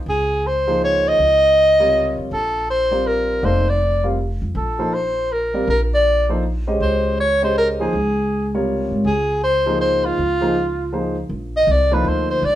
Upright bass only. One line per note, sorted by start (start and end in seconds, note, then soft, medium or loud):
0.06 1.15 C#2 medium
1.18 2.13 C#2 medium
2.18 2.30 F2 medium
2.31 3.39 A#1 medium
3.43 4.38 F1 medium
4.42 4.54 F2 medium
4.55 5.64 A#1 medium
5.68 6.76 A#1 medium
6.80 7.89 C#2 medium
7.93 8.88 C#2 medium
8.91 9.04 G#2 medium
9.05 10.14 C#2 medium
10.18 11.26 C#2 medium
11.29 11.66 A#1 medium
11.67 12.04 C2 medium
12.04 12.41 D2 medium
12.42 12.55 A#1 medium